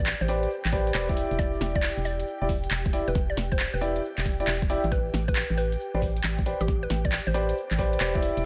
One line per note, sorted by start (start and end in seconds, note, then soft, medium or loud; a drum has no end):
0.00 0.14 A1 loud
0.00 8.45 G4 medium
0.00 0.11 D5 medium
0.00 8.45 G5 medium
0.06 clap loud
0.06 shaker medium
0.21 0.47 A1 medium
0.21 0.42 C5 loud
0.21 closed hi-hat soft
0.21 shaker soft
0.28 0.47 G4 medium
0.28 0.47 B4 medium
0.28 0.47 C5 medium
0.28 0.47 D5 loud
0.28 open hi-hat loud
0.28 shaker medium
0.43 closed hi-hat medium
0.43 shaker soft
0.50 shaker soft
0.65 0.91 A1 medium
0.65 clap medium
0.65 shaker soft
0.72 0.91 G4 medium
0.72 0.91 B4 medium
0.72 0.91 C5 medium
0.72 0.91 D5 loud
0.72 kick medium
0.72 open hi-hat loud
0.72 shaker medium
0.87 closed hi-hat medium
0.87 shaker soft
0.95 1.24 E1 loud
0.95 1.07 G4 medium
0.95 1.07 B4 medium
0.95 1.07 C5 medium
0.95 1.07 D5 loud
0.95 clap loud
0.95 shaker soft
1.09 2.38 E4 loud
1.09 2.38 G4 medium
1.09 2.38 D5 loud
1.09 kick loud
1.09 closed hi-hat soft
1.09 shaker soft
1.17 open hi-hat loud
1.17 shaker loud
1.31 1.57 E1 loud
1.31 closed hi-hat medium
1.31 shaker soft
1.39 1.60 D5 loud
1.39 kick loud
1.39 snare soft
1.39 shaker medium
1.54 shaker soft
1.61 1.90 E1 loud
1.61 snare medium
1.61 open hi-hat loud
1.61 shaker loud
1.75 1.97 D5 loud
1.75 kick loud
1.75 closed hi-hat medium
1.75 shaker soft
1.83 clap loud
1.83 shaker medium
1.97 2.23 E1 medium
1.97 closed hi-hat soft
1.97 shaker soft
2.04 2.27 D5 loud
2.04 open hi-hat loud
2.04 shaker loud
2.19 closed hi-hat medium
2.19 shaker soft
2.27 shaker medium
2.41 2.68 E1 medium
2.41 2.48 E4 medium
2.41 2.49 G4 medium
2.41 2.48 D5 medium
2.41 shaker soft
2.49 kick medium
2.49 open hi-hat loud
2.49 shaker loud
2.63 closed hi-hat medium
2.63 shaker soft
2.71 3.01 E1 loud
2.71 clap loud
2.71 shaker medium
2.86 kick loud
2.86 closed hi-hat medium
2.86 shaker soft
2.93 3.07 E4 medium
2.93 3.07 G4 medium
2.93 3.07 D5 medium
2.93 open hi-hat loud
2.93 shaker medium
3.08 3.34 E1 loud
3.08 3.20 B4 medium
3.08 closed hi-hat medium
3.08 shaker soft
3.15 kick loud
3.15 snare soft
3.15 shaker medium
3.30 3.42 D5 medium
3.30 shaker soft
3.37 3.67 E1 loud
3.37 snare medium
3.37 open hi-hat loud
3.37 shaker medium
3.52 3.64 C5 medium
3.52 kick loud
3.52 closed hi-hat medium
3.52 shaker soft
3.59 clap loud
3.59 shaker medium
3.74 4.00 E1 medium
3.74 3.95 B4 loud
3.74 closed hi-hat soft
3.74 shaker soft
3.81 4.00 E4 medium
3.81 4.00 G4 medium
3.81 4.00 D5 loud
3.81 open hi-hat loud
3.81 shaker loud
3.95 closed hi-hat medium
3.95 shaker soft
4.04 shaker medium
4.17 4.44 E1 medium
4.17 clap medium
4.17 shaker soft
4.25 kick medium
4.25 open hi-hat loud
4.25 shaker medium
4.40 4.47 E4 medium
4.40 4.47 G4 medium
4.40 4.47 D5 medium
4.40 closed hi-hat medium
4.40 shaker soft
4.47 4.77 E1 loud
4.47 clap loud
4.47 shaker medium
4.62 kick loud
4.62 closed hi-hat medium
4.62 shaker soft
4.70 4.83 E4 loud
4.70 4.83 G4 medium
4.70 4.83 D5 loud
4.70 open hi-hat loud
4.70 shaker loud
4.84 5.10 A1 loud
4.84 closed hi-hat medium
4.84 shaker soft
4.91 5.13 B4 loud
4.91 kick loud
4.91 snare soft
4.91 shaker medium
5.06 shaker soft
5.14 5.43 A1 loud
5.14 snare medium
5.14 open hi-hat loud
5.14 shaker medium
5.28 5.50 B4 medium
5.28 kick loud
5.28 closed hi-hat medium
5.28 shaker soft
5.36 clap loud
5.36 shaker medium
5.50 5.76 A1 medium
5.50 closed hi-hat soft
5.50 shaker soft
5.57 5.79 B4 medium
5.57 open hi-hat loud
5.57 shaker medium
5.72 closed hi-hat medium
5.72 shaker soft
5.80 shaker medium
5.94 6.20 A1 medium
5.94 6.01 G4 medium
5.94 6.01 B4 medium
5.94 6.01 C5 medium
5.94 6.01 D5 medium
5.94 shaker soft
6.01 kick medium
6.01 open hi-hat loud
6.01 shaker medium
6.16 closed hi-hat medium
6.16 shaker soft
6.24 6.54 A1 loud
6.24 clap loud
6.24 shaker medium
6.39 kick loud
6.39 closed hi-hat medium
6.39 shaker soft
6.46 6.60 G4 medium
6.46 6.60 B4 medium
6.46 6.60 C5 medium
6.46 6.60 D5 medium
6.46 open hi-hat loud
6.46 shaker medium
6.60 6.87 A1 loud
6.60 6.73 G4 medium
6.60 closed hi-hat medium
6.60 shaker soft
6.68 kick loud
6.68 snare soft
6.68 shaker soft
6.83 6.95 B4 medium
6.83 shaker soft
6.90 7.20 A1 loud
6.90 snare medium
6.90 open hi-hat loud
6.90 shaker medium
7.05 7.17 D5 medium
7.05 kick loud
7.05 closed hi-hat medium
7.05 shaker soft
7.12 clap loud
7.12 shaker soft
7.26 7.53 A1 medium
7.26 7.48 C5 medium
7.26 closed hi-hat soft
7.26 shaker soft
7.34 7.53 G4 medium
7.34 7.53 B4 medium
7.34 7.53 C5 medium
7.34 7.53 D5 loud
7.34 open hi-hat loud
7.34 shaker loud
7.48 closed hi-hat medium
7.48 shaker soft
7.57 shaker medium
7.71 7.97 A1 medium
7.71 clap medium
7.71 shaker soft
7.78 7.97 G4 medium
7.78 7.97 B4 medium
7.78 7.97 C5 medium
7.78 7.97 D5 loud
7.78 kick medium
7.78 open hi-hat loud
7.78 shaker medium
7.93 closed hi-hat medium
7.93 shaker soft
8.00 8.30 E1 loud
8.00 8.13 G4 loud
8.00 8.13 B4 medium
8.00 8.13 C5 medium
8.00 8.13 D5 loud
8.00 clap loud
8.00 shaker soft
8.15 8.45 E4 loud
8.15 8.45 G4 medium
8.15 8.45 D5 loud
8.15 kick loud
8.15 closed hi-hat medium
8.15 shaker soft
8.22 open hi-hat loud
8.22 shaker medium
8.37 8.45 E1 loud
8.37 closed hi-hat medium
8.37 shaker soft